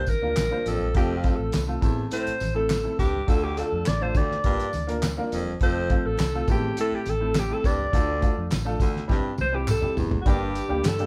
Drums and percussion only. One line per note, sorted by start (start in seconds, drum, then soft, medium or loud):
0.07 kick medium
0.07 closed hi-hat medium
0.07 tambourine medium
0.07 muted conga soft
0.07 low conga medium
0.36 snare loud
0.36 clap loud
0.36 closed hi-hat medium
0.36 tambourine loud
0.36 high conga medium
0.52 high conga soft
0.66 closed hi-hat medium
0.66 tambourine medium
0.80 high conga medium
0.95 kick loud
0.95 closed hi-hat medium
0.95 tambourine medium
0.95 muted conga soft
1.24 kick medium
1.24 closed hi-hat medium
1.24 tambourine soft
1.52 snare loud
1.52 clap loud
1.52 closed hi-hat medium
1.52 tambourine loud
1.52 high conga medium
1.82 kick loud
1.82 closed hi-hat medium
1.82 tambourine medium
1.82 low conga medium
2.11 closed hi-hat medium
2.11 tambourine soft
2.11 muted conga medium
2.27 closed hi-hat medium
2.40 closed hi-hat medium
2.40 tambourine medium
2.40 muted conga medium
2.40 low conga medium
2.70 snare loud
2.70 clap loud
2.70 closed hi-hat medium
2.70 tambourine loud
2.70 high conga medium
2.85 high conga soft
2.99 kick medium
2.99 closed hi-hat medium
2.99 tambourine medium
3.14 high conga medium
3.28 kick loud
3.28 closed hi-hat medium
3.28 tambourine medium
3.28 muted conga soft
3.57 closed hi-hat medium
3.57 tambourine soft
3.86 snare loud
3.86 clap loud
3.86 closed hi-hat medium
3.86 tambourine loud
3.86 high conga medium
4.15 kick loud
4.15 closed hi-hat medium
4.15 tambourine medium
4.15 low conga medium
4.32 snare soft
4.44 kick medium
4.44 closed hi-hat medium
4.44 tambourine soft
4.44 muted conga medium
4.60 closed hi-hat medium
4.73 closed hi-hat medium
4.73 tambourine medium
4.73 muted conga soft
4.73 low conga medium
4.89 closed hi-hat medium
5.02 snare loud
5.02 clap loud
5.02 closed hi-hat medium
5.02 tambourine loud
5.02 high conga medium
5.17 high conga soft
5.32 closed hi-hat medium
5.32 tambourine medium
5.46 high conga medium
5.60 kick loud
5.60 closed hi-hat medium
5.60 tambourine medium
5.60 muted conga soft
5.90 kick loud
5.90 closed hi-hat medium
5.90 muted conga soft
6.18 snare loud
6.18 clap loud
6.18 closed hi-hat medium
6.18 tambourine loud
6.18 high conga medium
6.48 kick loud
6.48 closed hi-hat medium
6.48 tambourine medium
6.48 low conga medium
6.77 closed hi-hat loud
6.77 tambourine soft
6.77 muted conga medium
7.05 closed hi-hat medium
7.05 tambourine medium
7.05 muted conga soft
7.05 low conga medium
7.34 snare loud
7.34 clap loud
7.34 closed hi-hat medium
7.34 tambourine loud
7.34 high conga medium
7.50 high conga soft
7.64 kick medium
7.64 closed hi-hat medium
7.64 tambourine medium
7.79 high conga medium
7.93 kick loud
7.93 closed hi-hat loud
7.93 tambourine medium
7.93 muted conga soft
8.22 kick medium
8.22 closed hi-hat medium
8.22 tambourine soft
8.51 snare loud
8.51 clap loud
8.51 closed hi-hat medium
8.51 tambourine loud
8.51 high conga medium
8.80 kick loud
8.80 closed hi-hat medium
8.80 tambourine medium
8.80 low conga medium
8.96 snare soft
9.09 kick medium
9.09 snare medium
9.09 tambourine soft
9.09 muted conga medium
9.38 high tom medium
9.38 tambourine medium
9.38 muted conga medium
9.38 low conga medium
9.68 clap loud
9.68 mid tom medium
9.68 tambourine loud
9.68 high conga medium
9.82 mid tom medium
9.97 floor tom loud
9.97 tambourine medium
10.11 floor tom loud
10.11 high conga medium
10.26 kick loud
10.26 closed hi-hat loud
10.26 tambourine medium
10.26 muted conga soft
10.55 closed hi-hat medium
10.55 tambourine soft
10.83 snare loud
10.83 clap loud
10.83 closed hi-hat loud
10.83 tambourine loud
10.83 high conga medium
10.99 closed hi-hat medium